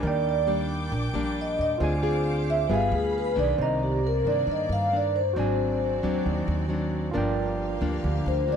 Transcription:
Already playing: nylon-string guitar G3 A#3 D4
0.03 upright bass D#2, nylon-string guitar D#3, string section D4 G5 D6, tine electric piano A#4 D5
0.07 vibraphone D5, tine electric piano G5
0.29 vibraphone D5
0.47 nylon-string guitar G3 A#3 D4
0.91 upright bass A#1, nylon-string guitar A#2
1.14 upright bass A#1, nylon-string guitar G3 A#3 D4
1.41 vibraphone D#5
1.59 upright bass D#2, vibraphone D#5
1.78 upright bass D2, nylon-string guitar D3 C4 F4, tine electric piano F4 C5, string section C5 F5 D6
1.82 nylon-string guitar G#4, tine electric piano D5 G#5
2.02 nylon-string guitar C4 F4 G#4
2.50 vibraphone E5
2.69 upright bass G1, nylon-string guitar G3 B3 F4 G#4, string section G#4 F5 B5, tine electric piano B4 F5 G#5
2.74 vibraphone F5
2.92 upright bass D2, vibraphone G#4
3.18 vibraphone B4
3.36 upright bass B1, nylon-string guitar D#3 A#3 D4, vibraphone D5
3.58 upright bass C2, nylon-string guitar C3, string section A#3 D5, tine electric piano C5 D5, vibraphone D#5
3.62 tine electric piano A#5
3.83 vibraphone G4
4.07 vibraphone A#4
4.25 upright bass G2, nylon-string guitar D#3 A#3 D4, vibraphone D5
4.47 upright bass G2, nylon-string guitar G2
4.52 vibraphone D#5
4.69 upright bass G2, vibraphone F5
4.92 nylon-string guitar D#3 A#3 D4
4.97 vibraphone D5
5.16 vibraphone C5
5.33 upright bass G#1, nylon-string guitar G#2 F#3 C4, string section C4 F#4 D5, tine electric piano F#4 C5 D5
5.38 nylon-string guitar D4, tine electric piano G#5
6.03 upright bass D#2, nylon-string guitar F#3 C4 D4
6.25 upright bass D#2, nylon-string guitar D#3
6.48 upright bass D#2
6.69 nylon-string guitar F#3 C4 D4
7.11 upright bass G1, nylon-string guitar G2 F3 A#3 D4, string section A#3 G4 F5, tine electric piano F4 A#4 D5
7.17 tine electric piano G5
7.81 upright bass D2, nylon-string guitar F3 A#3 D4
8.03 upright bass D2, nylon-string guitar D3
8.26 upright bass D2, vibraphone C5
8.47 nylon-string guitar F3 A#3 D4
8.52 vibraphone D5

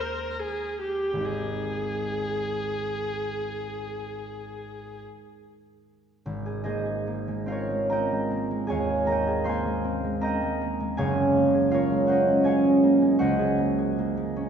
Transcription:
Already playing: harp D#2 G#3 C#4 F4
0.01 viola A#4
0.40 viola G#4
0.81 viola G4
1.13 harp G#1 G#3
1.17 harp C4 D#4
1.22 harp G4, viola G#4
6.26 harp G#1
6.46 harp G#4
6.64 harp A#3 G#4 C5 D#5
6.86 harp G#4
7.07 harp A#3
7.28 harp G#3
7.46 harp C4 F4 A#4 F5
7.52 harp C#5
7.70 harp G#3
7.90 harp C4 A#4 D#5 G5 A#5
8.12 harp G#3
8.31 harp A#3
8.51 harp G#3
8.67 harp D#2 G#4 C#5 G#5
8.72 harp F5
8.89 harp G#4
9.04 harp A#3 A#4 A#5
9.09 harp D#5 G5
9.27 harp G#4
9.44 harp A#3 C5 F5 C6
9.49 harp G#5
9.65 harp G#3
9.84 harp C4
10.04 harp G#3
10.21 harp C4 A#4 D#5 G5 A#5
10.42 harp G#3
10.62 harp A#3
10.80 harp G#3
10.97 harp F#1 G#4 C#5 F5 G#5
11.18 harp G#4
11.36 harp A#3
11.55 harp G#4
11.71 harp A#3 F4 A#4 C#5 F5
11.91 harp G#3
12.07 harp C#4 F#4 C5 F#5
12.11 harp D#5
12.28 harp G#3
12.44 harp C#4 G#4 C#5 F5 G#5
12.64 harp G#3
12.83 harp A#3
13.02 harp G#3
13.19 harp C#2 F#4 C5 D#5 F#5
13.39 harp G#4
13.58 harp A#3
13.78 harp G#4
13.98 harp A#3
14.17 harp G#3
14.36 harp C#4

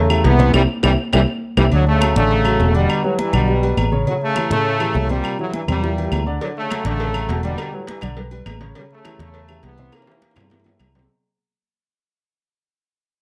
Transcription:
Already playing: fingered electric bass E2, trombone section C#3 A3
0.10 upright piano E3 E4 G4, high conga, low agogo, claves
0.24 fingered electric bass C2, upright piano E3 E4 G4, trombone section E3 B3, cowbell, high conga, low timbale
0.38 upright piano C3 C4 C5, high conga, low agogo
0.54 fingered electric bass C2, trombone section C3 E3 G3, upright piano C4 E4 G4, cowbell, high conga, high timbale, claves
0.83 fingered electric bass C2, trombone section C3 E3 G3, upright piano C4 E4 G4, cowbell, high conga, high timbale, claves
1.13 fingered electric bass C2, trombone section C3 E3 G3, upright piano C4 E4 G4, cowbell, high conga, high timbale, claves
1.57 fingered electric bass C2, trombone section C3 E3 G3, upright piano C4 E4 G4, cowbell, high conga, high timbale, claves
1.72 fingered electric bass D2, trombone section A2 F#3, upright piano D3 D4 D5, high conga, low agogo
1.87 trombone section C#3 A3, high conga
2.01 upright piano F#3 F#4 A4, high conga, low timbale, low agogo, claves
2.16 fingered electric bass A1, trombone section C#3 A3, upright piano D3 D4 D5, high conga
2.31 high conga, low agogo
2.45 upright piano F#3 F#4 A4, high conga, low agogo, claves
2.60 fingered electric bass E1, upright piano F#3 F#4, high conga, low timbale
2.74 trombone section B2 G3, upright piano D3 D4 D5, high conga, low agogo
2.89 high conga, low agogo, claves
3.04 trombone section A2 F#3, upright piano G3 G4 B4, high conga
3.19 trombone section G2 E3, high conga, low timbale, low agogo
3.33 fingered electric bass B1, trombone section B2 G3, upright piano D3 D4 D5, high conga, low conga, low agogo, claves
3.48 upright piano G3 G4 B4, high conga
3.63 upright piano G3 G4 B4, high conga, low agogo
3.77 fingered electric bass A1, high conga, low timbale, low agogo, claves
3.92 upright piano C#3 C#4 C#5, high conga
4.06 trombone section A2 F#3, upright piano C#3 C#4 C#5, high conga, low agogo
4.21 trombone section C#3 A3, high conga
4.36 upright piano E3 E4 G4, high conga, low timbale, low agogo, claves
4.50 fingered electric bass A2, upright piano C#3 C#4 C#5, trombone section C#3 A3, high conga
4.65 high conga, low agogo
4.80 upright piano E3 E4 G4, high conga, low agogo, claves
4.94 fingered electric bass C2, upright piano E3 E4 G4, high conga, low timbale
5.09 trombone section A#2 G3, upright piano C3 C4 C5, high conga, low agogo
5.24 high conga, low agogo, claves
5.39 trombone section A2 F#3, upright piano E3 E4 G4, high conga
5.54 trombone section G2 E3, high conga, low timbale, low agogo
5.68 fingered electric bass E2, trombone section A#2 G3, upright piano C3 C4 C5, high conga, low conga, low agogo, claves
5.83 upright piano E3 E4 G4, high conga, low conga
5.98 upright piano E3 E4 G4, high conga, low agogo
6.12 fingered electric bass D2, high conga, low timbale, low agogo, claves
6.26 upright piano D3 D4 D5, high conga
6.40 trombone section A2 F#3, upright piano D3 D4 D5, cowbell, high conga, low agogo
6.57 trombone section C#3 A3, high conga
6.70 upright piano F#3 F#4 A4, cowbell, high conga, low timbale, low agogo, claves
6.85 fingered electric bass A1, trombone section C#3 A3, upright piano D3 D4 D5, cowbell, high conga
7.00 cowbell, high conga, low agogo
7.14 upright piano F#3 F#4 A4, high conga, low agogo, claves
7.29 fingered electric bass E1, upright piano F#3 F#4 A4, cowbell, high conga, low timbale
7.43 trombone section B2 G3, upright piano D3 D4 D5, high conga, low agogo
7.58 cowbell, high conga, low agogo, claves
7.72 trombone section A2 F#3, upright piano G3 G4 B4, high conga
7.87 trombone section G2 E3, cowbell, high conga, low timbale, low agogo
8.01 fingered electric bass B1, upright piano D3 D4 D5, cowbell, high conga, low conga, low agogo, claves
8.17 upright piano G3 G4 B4, cowbell, high conga
8.31 upright piano G3 G4 B4, high conga, low agogo
8.46 fingered electric bass A1, cowbell, high conga, low timbale, low agogo, claves
8.61 upright piano C#3 C#4 C#5, cowbell
8.75 upright piano C#3 C#4 C#5, trombone section C#3 G3, cowbell, high conga, low agogo
8.91 trombone section C#3 A3, high conga
9.05 upright piano E3 E4 G4, cowbell, high conga, low timbale, low agogo, claves
9.19 fingered electric bass E2, upright piano C#3 C#4 C#5, trombone section C#3 A3, cowbell, high conga
9.34 cowbell, high conga, low agogo
9.48 upright piano E3 E4 G4, high conga, low agogo, claves
9.63 fingered electric bass C2, upright piano E3 E4 G4, trombone section E3 B3, cowbell, high conga, low timbale
9.78 upright piano C3 C4 C5, high conga, low agogo
9.92 trombone section E3 A#3, cowbell, high bongo, high conga, high timbale, low agogo, claves
10.02 high timbale
10.07 upright piano E3 E4 G4, high bongo, high conga
10.12 high timbale
10.22 cowbell, high conga, low agogo
10.31 high timbale
10.36 fingered electric bass G2, upright piano C3 C4 C5, cowbell, low bongo, high conga, low conga, low agogo, claves
10.40 low timbale
10.50 upright piano E3 E4 G4, cowbell, low bongo, high conga, low timbale
10.60 low timbale
10.64 upright piano E3 E4 G4, low bongo, high conga, low agogo
10.69 low timbale
10.79 fingered electric bass C2, cowbell, low bongo, low conga, low timbale, low agogo, claves
10.95 upright piano C3 C4 C5, cowbell, low bongo, low conga, low timbale

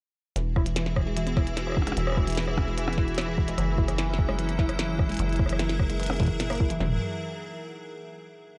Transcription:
0.36 acid bass E1, synth texture E3 E5, synth pluck E3, ambient pad E3 E4 F#4 G#4, closed hi-hat
0.56 synth pluck E4, kick, cross-stick
0.66 synth pluck E3, closed hi-hat
0.76 synth pluck E3, snare, closed hi-hat
0.86 synth pluck E3, snare
0.96 kick, cross-stick
1.06 synth pluck G#3
1.16 synth pluck E3, closed hi-hat
1.27 synth pluck B3, closed hi-hat
1.37 synth pluck E4, kick, cross-stick, snare
1.47 closed hi-hat
1.57 synth pluck E3, snare, closed hi-hat
1.67 synth pluck E3, cross-stick
1.70 cross-stick
1.72 cross-stick
1.74 synth pluck E3, kick, cross-stick, percussion blips
1.82 percussion blips
1.87 synth pluck G#3, closed hi-hat, percussion blips
1.92 percussion blips
1.97 acid bass E1, synth pluck E3, closed hi-hat
2.07 cross-stick
2.10 cross-stick
2.12 cross-stick
2.15 synth pluck E4, kick, cross-stick
2.17 cross-stick
2.20 cross-stick
2.22 cross-stick
2.25 synth pluck E3, cross-stick, closed hi-hat
2.30 closed hi-hat
2.32 closed hi-hat
2.35 synth pluck E3, snare, closed hi-hat
2.37 closed hi-hat
2.40 closed hi-hat
2.45 synth pluck E3, cross-stick, closed hi-hat
2.57 kick, percussion blips
2.67 synth pluck G#3
2.77 synth pluck E3, closed hi-hat
2.87 synth pluck B3, percussion blips
2.93 closed hi-hat
2.98 synth pluck E4, kick, snare
3.08 closed hi-hat
3.15 synth pluck E3, cross-stick, snare, closed hi-hat
3.18 closed hi-hat
3.21 closed hi-hat
3.28 synth pluck E3
3.38 synth pluck E3, kick
3.48 synth pluck G#3, closed hi-hat
3.58 acid bass F#1, synth pluck E3, ambient pad F#3 C#4 E4, cross-stick, closed hi-hat
3.78 synth pluck E4, kick
3.88 synth pluck E3, cross-stick, closed hi-hat
3.98 synth pluck E3, snare, closed hi-hat
4.08 synth pluck E3
4.14 snare
4.19 kick
4.28 synth pluck G#3, cross-stick
4.39 synth pluck E3, closed hi-hat
4.49 synth pluck B3, closed hi-hat
4.59 synth pluck E4, kick, snare
4.69 cross-stick, closed hi-hat
4.79 synth pluck E3, snare, closed hi-hat
4.89 synth pluck E3
4.99 synth pluck E3, kick, cross-stick
5.09 synth pluck G#3, closed hi-hat
5.12 closed hi-hat
5.14 closed hi-hat
5.17 synth pluck E3, ambient pad G#4 E5, closed hi-hat
5.19 acid bass F#1, ambient pad A#4, closed hi-hat
5.29 closed hi-hat
5.33 closed hi-hat
5.36 synth pluck E4, kick, cross-stick, closed hi-hat
5.46 synth pluck E3, cross-stick, closed hi-hat
5.53 cross-stick
5.59 synth pluck E3, snare, closed hi-hat
5.69 synth pluck E3, snare, closed hi-hat
5.80 kick, cross-stick
5.90 synth pluck G#3, closed hi-hat
6.00 synth pluck E3, closed hi-hat
6.03 closed hi-hat
6.06 synth pluck A#3, cross-stick, closed hi-hat
6.10 closed hi-hat, percussion blips
6.13 closed hi-hat
6.16 snare, closed hi-hat
6.20 synth pluck E3, kick, closed hi-hat
6.22 kick, closed hi-hat
6.25 kick, closed hi-hat
6.27 kick
6.40 synth pluck A#2, snare, closed hi-hat
6.50 synth pluck A#3, cross-stick, closed hi-hat
6.52 closed hi-hat
6.55 closed hi-hat
6.57 synth pluck E4, kick, closed hi-hat
6.70 synth pluck E3, closed hi-hat
6.80 acid bass E1, synth pluck E3, snare, floor tom

